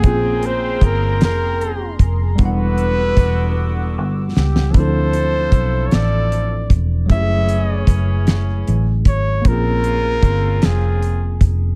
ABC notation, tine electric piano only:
X:1
M:6/8
L:1/8
Q:3/8=51
K:Dlyd
V:1 name="Tine electric piano"
[^A,^B,C^EG]6 | [=G,B,DEf]6 | [=F,=CDEA]6 | [F,A,CE=G^G]6 |
[^A,^B,C^EG]6 |]